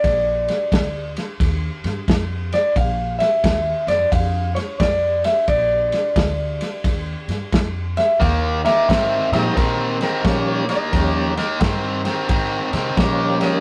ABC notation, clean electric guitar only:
X:1
M:4/4
L:1/8
Q:"Swing" 1/4=88
K:Eb
V:1 name="Clean electric guitar"
d3 z4 d | f =e2 d f _d =d e | d6 z =e | f =e2 _e B B _d e- |
e3 z4 e |]